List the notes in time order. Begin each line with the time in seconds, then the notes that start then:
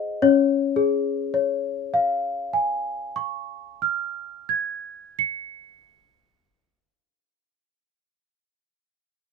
Already playing: G#4 C5 D#5 F#5
0.22 C#4 C#5
0.76 G#4
1.34 C#5
1.94 F5
2.53 G#5
3.16 C#6
3.82 F6
4.49 G#6
5.19 C#7